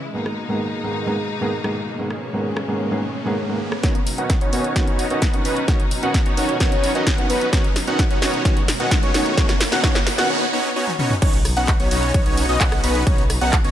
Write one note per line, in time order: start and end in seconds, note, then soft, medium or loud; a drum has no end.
0.00 0.10 C#3 medium
0.00 0.11 E3 medium
0.00 3.80 G#3 medium
0.00 0.11 E4 medium
0.14 0.22 G#2 medium
0.14 3.80 B2 medium
0.14 0.22 D#3 medium
0.14 3.80 A#3 medium
0.14 0.22 A#3 medium
0.14 0.23 B3 medium
0.14 1.97 D#4 medium
0.14 0.23 G#4 medium
0.14 riser medium
0.26 cross-stick medium
0.48 0.62 G#2 medium
0.48 0.62 D#3 medium
0.48 0.62 A#3 medium
0.48 0.62 B3 medium
0.48 0.62 G#4 medium
0.83 1.04 G#2 medium
0.83 1.04 D#3 medium
0.83 1.04 A#3 medium
0.83 1.04 B3 medium
0.83 1.04 G#4 medium
1.06 1.14 G#2 medium
1.06 1.15 D#3 medium
1.06 1.15 A#3 medium
1.06 1.15 B3 medium
1.06 1.15 G#4 loud
1.41 1.49 G#2 loud
1.41 1.49 D#3 medium
1.41 1.49 A#3 medium
1.41 1.49 B3 medium
1.41 1.50 G#4 loud
1.64 1.72 G#2 medium
1.64 1.72 D#3 medium
1.64 1.72 A#3 medium
1.64 1.73 B3 medium
1.64 1.73 G#4 medium
1.64 cross-stick medium
1.98 2.07 G#2 medium
1.98 2.07 D#3 medium
1.98 2.07 A#3 medium
1.98 2.07 B3 medium
1.98 3.82 C#4 medium
1.98 2.07 G#4 medium
2.11 cross-stick medium
2.33 2.46 G#2 medium
2.33 2.46 D#3 medium
2.33 2.46 A#3 medium
2.33 2.47 B3 medium
2.33 2.47 G#4 medium
2.57 cross-stick medium
2.68 2.88 G#2 medium
2.68 2.88 D#3 medium
2.68 2.89 A#3 medium
2.68 2.89 B3 medium
2.68 2.89 G#4 medium
2.91 2.99 G#2 medium
2.91 2.99 D#3 medium
2.91 2.99 A#3 medium
2.91 3.00 B3 medium
2.91 3.00 G#4 loud
3.25 3.34 G#2 loud
3.25 3.34 D#3 medium
3.25 3.34 A#3 medium
3.25 3.34 B3 medium
3.25 3.34 G#4 loud
3.48 3.57 G#2 medium
3.48 3.57 D#3 medium
3.48 3.57 A#3 medium
3.48 3.57 B3 medium
3.48 3.57 G#4 medium
3.72 cross-stick medium
3.83 10.26 B2 medium
3.83 3.91 D#3 medium
3.83 10.26 F#3 medium
3.83 3.92 B3 medium
3.83 3.99 B3 medium
3.83 3.99 C#4 medium
3.83 10.26 C#4 medium
3.83 3.92 C#4 medium
3.83 10.26 D#4 medium
3.83 3.99 D#4 medium
3.83 3.99 F#4 medium
3.83 3.92 F#4 medium
3.83 3.99 C#5 medium
3.83 kick loud
3.83 snare soft
3.83 closed hi-hat medium
3.83 riser medium
3.95 closed hi-hat soft
4.07 open hi-hat loud
4.18 4.31 D#3 medium
4.18 4.31 B3 medium
4.18 4.34 B3 loud
4.18 4.34 C#4 medium
4.18 4.31 C#4 medium
4.18 4.34 D#4 medium
4.18 4.34 F#4 medium
4.18 4.31 F#4 medium
4.18 4.34 F#5 loud
4.18 closed hi-hat soft
4.30 kick loud
4.30 snare soft
4.30 closed hi-hat loud
4.41 4.50 B3 medium
4.41 4.50 C#4 medium
4.41 4.50 D#4 medium
4.41 4.50 F#4 medium
4.41 4.50 C#5 loud
4.41 closed hi-hat soft
4.52 4.73 D#3 medium
4.52 4.73 B3 medium
4.52 4.73 C#4 medium
4.52 4.73 D#4 medium
4.52 4.73 F#4 medium
4.52 4.73 C#5 medium
4.52 open hi-hat medium
4.64 closed hi-hat soft
4.75 4.84 D#3 medium
4.75 4.84 B3 medium
4.75 4.86 B3 medium
4.75 4.86 C#4 medium
4.75 4.84 C#4 medium
4.75 4.86 D#4 medium
4.75 4.86 F#4 medium
4.75 4.84 F#4 loud
4.75 4.86 C#5 medium
4.75 kick loud
4.75 snare medium
4.75 closed hi-hat loud
4.87 5.08 B3 medium
4.87 5.08 C#4 medium
4.87 5.08 D#4 medium
4.87 5.08 F#4 medium
4.87 5.08 C#5 loud
4.87 closed hi-hat soft
4.99 open hi-hat loud
5.10 5.18 D#3 loud
5.10 5.18 B3 medium
5.10 5.20 B3 medium
5.10 5.20 C#4 medium
5.10 5.19 C#4 medium
5.10 5.20 D#4 medium
5.10 5.20 F#4 medium
5.10 5.19 F#4 loud
5.10 5.20 D#5 loud
5.10 closed hi-hat soft
5.22 5.42 B3 medium
5.22 5.42 C#4 medium
5.22 5.42 D#4 medium
5.22 5.42 F#4 medium
5.22 5.42 F#5 medium
5.22 kick loud
5.22 snare medium
5.22 closed hi-hat loud
5.33 5.41 D#3 medium
5.33 5.42 B3 medium
5.33 5.42 C#4 medium
5.33 5.42 F#4 medium
5.33 closed hi-hat soft
5.45 5.65 B3 medium
5.45 5.65 C#4 medium
5.45 5.65 D#4 medium
5.45 5.65 F#4 medium
5.45 5.65 B4 loud
5.45 open hi-hat medium
5.57 closed hi-hat soft
5.68 5.76 D#3 medium
5.68 5.76 B3 medium
5.68 5.84 B3 medium
5.68 5.84 C#4 medium
5.68 5.76 C#4 medium
5.68 5.84 D#4 medium
5.68 5.84 F#4 medium
5.68 5.77 F#4 medium
5.68 5.84 C#5 medium
5.68 kick loud
5.68 snare medium
5.68 closed hi-hat medium
5.80 closed hi-hat soft
5.91 open hi-hat loud
6.02 6.15 D#3 medium
6.02 6.16 B3 medium
6.02 6.18 B3 medium
6.02 6.18 C#4 medium
6.02 6.16 C#4 medium
6.02 6.18 D#4 medium
6.02 6.18 F#4 medium
6.02 6.16 F#4 medium
6.02 6.18 F#5 loud
6.02 closed hi-hat soft
6.14 kick loud
6.14 snare medium
6.14 closed hi-hat medium
6.26 6.35 B3 medium
6.26 6.35 C#4 medium
6.26 6.35 D#4 medium
6.26 6.35 F#4 medium
6.26 6.35 C#5 loud
6.26 closed hi-hat soft
6.37 6.57 D#3 medium
6.37 6.58 B3 medium
6.37 6.58 C#4 medium
6.37 6.58 D#4 medium
6.37 6.58 F#4 medium
6.37 6.58 C#5 medium
6.37 open hi-hat medium
6.49 closed hi-hat soft
6.60 6.68 D#3 medium
6.60 6.68 B3 medium
6.60 6.70 B3 medium
6.60 6.70 C#4 medium
6.60 6.69 C#4 medium
6.60 6.69 F#4 loud
6.60 6.70 C#5 medium
6.60 kick loud
6.60 snare medium
6.60 closed hi-hat loud
6.72 6.92 B3 loud
6.72 6.92 C#4 medium
6.72 6.92 D#4 medium
6.72 6.92 F#4 medium
6.72 6.92 C#5 loud
6.72 closed hi-hat soft
6.84 open hi-hat loud
6.95 7.03 D#3 loud
6.95 7.03 B3 medium
6.95 7.05 B3 loud
6.95 7.05 C#4 medium
6.95 7.03 C#4 medium
6.95 7.05 D#4 medium
6.95 7.05 F#4 medium
6.95 7.03 F#4 loud
6.95 7.05 D#5 loud
6.95 closed hi-hat soft
7.07 7.27 F#5 medium
7.07 kick loud
7.07 snare medium
7.07 closed hi-hat loud
7.18 7.26 D#3 medium
7.18 7.26 B3 medium
7.18 7.26 C#4 medium
7.18 7.27 F#4 medium
7.18 closed hi-hat soft
7.30 7.49 B3 medium
7.30 7.49 C#4 medium
7.30 7.49 D#4 medium
7.30 7.49 F#4 medium
7.30 7.49 B4 loud
7.30 7.49 B4 medium
7.30 open hi-hat medium
7.41 closed hi-hat soft
7.52 7.61 D#3 medium
7.52 7.61 B3 medium
7.52 7.68 C#4 medium
7.52 7.61 C#4 medium
7.52 7.68 D#4 medium
7.52 7.68 F#4 medium
7.52 7.61 F#4 medium
7.52 7.68 C#5 medium
7.52 kick loud
7.52 snare medium
7.52 closed hi-hat medium
7.64 closed hi-hat soft
7.76 snare medium
7.76 open hi-hat loud
7.87 8.00 D#3 medium
7.87 8.00 B3 medium
7.87 8.03 B3 medium
7.87 8.03 C#4 medium
7.87 8.00 C#4 medium
7.87 8.03 D#4 medium
7.87 8.03 F#4 medium
7.87 8.01 F#4 medium
7.87 8.03 F#5 loud
7.87 closed hi-hat soft
7.99 kick loud
7.99 snare medium
7.99 closed hi-hat medium
8.11 8.19 B3 medium
8.11 8.19 C#4 medium
8.11 8.19 D#4 medium
8.11 8.19 F#4 medium
8.11 8.19 C#5 medium
8.11 closed hi-hat soft
8.22 8.42 D#3 medium
8.22 8.42 B3 medium
8.22 8.42 C#4 medium
8.22 8.43 C#4 medium
8.22 8.42 D#4 medium
8.22 8.42 F#4 medium
8.22 8.43 F#4 medium
8.22 8.42 C#5 medium
8.22 snare medium
8.22 open hi-hat loud
8.34 closed hi-hat soft
8.45 8.53 D#3 medium
8.45 8.53 B3 medium
8.45 8.61 B3 medium
8.45 8.61 C#4 medium
8.45 8.53 C#4 medium
8.45 8.61 D#4 medium
8.45 8.61 F#4 medium
8.45 8.53 F#4 medium
8.45 8.61 C#5 medium
8.45 kick loud
8.45 snare medium
8.45 closed hi-hat medium
8.57 closed hi-hat soft
8.68 snare medium
8.68 open hi-hat loud
8.79 8.92 D#3 medium
8.79 8.93 B3 medium
8.79 8.95 B3 medium
8.79 8.95 C#4 medium
8.79 8.93 C#4 medium
8.79 8.95 D#4 medium
8.79 8.95 F#4 medium
8.79 8.93 F#4 medium
8.79 8.95 F#5 loud
8.79 closed hi-hat soft
8.91 kick loud
8.91 snare medium
8.91 closed hi-hat medium
9.03 9.12 B3 medium
9.03 9.12 C#4 medium
9.03 9.12 D#4 medium
9.03 9.12 F#4 medium
9.03 9.12 C#5 medium
9.03 9.12 C#5 loud
9.03 closed hi-hat soft
9.14 9.34 D#3 medium
9.14 9.35 B3 medium
9.14 9.35 C#4 medium
9.14 9.35 D#4 medium
9.14 9.35 F#4 medium
9.14 9.35 C#5 medium
9.14 snare medium
9.14 open hi-hat loud
9.26 closed hi-hat soft
9.37 9.45 D#3 medium
9.37 9.45 B3 medium
9.37 9.53 C#4 medium
9.37 9.46 C#4 medium
9.37 9.53 D#4 medium
9.37 9.53 F#4 medium
9.37 9.46 F#4 medium
9.37 9.53 C#5 medium
9.37 kick loud
9.37 snare medium
9.37 closed hi-hat medium
9.37 noise sweep medium
9.49 snare medium
9.49 closed hi-hat soft
9.61 snare medium
9.61 open hi-hat loud
9.72 9.81 D#3 medium
9.72 9.82 B3 medium
9.72 9.82 B3 loud
9.72 9.82 C#4 medium
9.72 9.82 D#4 medium
9.72 9.82 F#4 medium
9.72 9.82 F#5 loud
9.72 snare medium
9.72 closed hi-hat soft
9.83 9.91 D#3 medium
9.83 9.92 B3 medium
9.83 9.99 B3 medium
9.83 9.99 C#4 medium
9.83 9.92 C#4 medium
9.83 9.99 D#4 medium
9.83 9.99 F#4 medium
9.83 9.92 F#4 medium
9.83 9.99 C#5 medium
9.83 kick loud
9.83 snare loud
9.83 closed hi-hat medium
9.95 snare medium
9.95 closed hi-hat soft
10.07 snare loud
10.07 open hi-hat loud
10.18 10.28 D#3 medium
10.18 10.28 B3 medium
10.18 10.28 B3 loud
10.18 10.28 C#4 medium
10.18 10.28 D#4 medium
10.18 10.28 F#4 medium
10.18 10.28 F#5 loud
10.18 snare medium
10.18 closed hi-hat soft
10.30 10.45 B3 medium
10.30 10.45 C#4 medium
10.30 10.45 D#4 medium
10.30 10.45 F#4 medium
10.30 10.45 C#5 medium
10.53 10.68 B3 medium
10.53 10.68 C#4 medium
10.53 10.68 D#4 medium
10.53 10.68 F#4 medium
10.53 10.68 C#5 medium
10.76 10.91 B3 medium
10.76 10.91 C#4 medium
10.76 10.91 D#4 medium
10.76 10.91 F#4 medium
10.76 10.91 C#5 medium
10.87 high tom medium
10.99 11.14 B3 medium
10.99 11.14 C#4 medium
10.99 11.14 D#4 medium
10.99 11.14 F#4 medium
10.99 11.14 C#5 medium
10.99 mid tom medium
11.11 mid tom medium
11.22 11.54 B1 loud
11.22 13.71 C#3 medium
11.22 13.71 F#3 medium
11.22 13.71 B3 medium
11.22 11.38 B3 medium
11.22 11.37 C#4 medium
11.22 13.71 D#4 loud
11.22 11.37 D#4 medium
11.22 11.38 F#4 medium
11.22 11.37 C#5 medium
11.22 kick loud
11.22 closed hi-hat medium
11.22 crash loud
11.34 closed hi-hat soft
11.45 cross-stick medium
11.45 open hi-hat loud
11.57 11.77 B1 loud
11.57 11.72 B3 loud
11.57 11.72 C#4 medium
11.57 11.72 D#4 medium
11.57 11.72 F#4 medium
11.57 11.72 F#5 loud
11.57 closed hi-hat soft
11.68 kick loud
11.68 clap loud
11.68 closed hi-hat loud
11.80 11.89 B1 loud
11.80 11.89 B3 medium
11.80 11.89 C#4 medium
11.80 11.89 D#4 medium
11.80 11.89 F#4 medium
11.80 11.89 C#5 loud
11.80 closed hi-hat soft
11.91 12.12 B1 loud
11.91 12.12 B3 medium
11.91 12.12 C#4 medium
11.91 12.12 D#4 medium
11.91 12.12 F#4 medium
11.91 12.12 C#5 medium
11.91 open hi-hat loud
12.03 closed hi-hat soft
12.14 12.24 B1 loud
12.14 12.24 B3 medium
12.14 12.24 C#4 medium
12.14 12.24 D#4 medium
12.14 12.24 F#4 medium
12.14 12.24 C#5 medium
12.14 kick loud
12.14 closed hi-hat loud
12.26 12.47 B1 loud
12.26 12.46 B3 loud
12.26 12.46 C#4 medium
12.26 12.46 D#4 medium
12.26 12.46 F#4 medium
12.26 12.46 C#5 loud
12.26 closed hi-hat soft
12.37 open hi-hat loud
12.49 12.58 B1 medium
12.49 12.59 B3 loud
12.49 12.59 C#4 medium
12.49 12.59 D#4 medium
12.49 12.59 F#4 medium
12.49 12.59 D#5 loud
12.49 closed hi-hat soft
12.60 12.81 B1 medium
12.60 12.81 B3 medium
12.60 12.81 C#4 medium
12.60 12.81 D#4 medium
12.60 12.81 F#4 medium
12.60 12.81 F#5 medium
12.60 kick loud
12.60 clap loud
12.60 closed hi-hat loud
12.72 cross-stick medium
12.72 closed hi-hat soft
12.84 13.04 B1 loud
12.84 13.03 B3 medium
12.84 13.03 C#4 medium
12.84 13.03 D#4 medium
12.84 13.03 F#4 medium
12.84 13.03 B4 loud
12.84 open hi-hat loud
12.95 closed hi-hat soft
13.07 13.39 B1 loud
13.07 13.22 B3 medium
13.07 13.22 C#4 medium
13.07 13.22 C#5 medium
13.07 kick loud
13.07 closed hi-hat medium
13.18 closed hi-hat soft
13.30 cross-stick medium
13.30 open hi-hat loud
13.41 13.62 B1 loud
13.41 13.57 B3 loud
13.41 13.57 C#4 medium
13.41 13.57 D#4 medium
13.41 13.57 F#4 medium
13.41 13.57 F#5 loud
13.41 closed hi-hat soft
13.53 kick loud
13.53 clap loud
13.53 closed hi-hat medium
13.64 13.71 B1 loud
13.64 13.71 B3 medium
13.64 13.71 C#4 medium
13.64 13.71 D#4 medium
13.64 13.71 F#4 medium
13.64 13.71 C#5 loud
13.64 closed hi-hat soft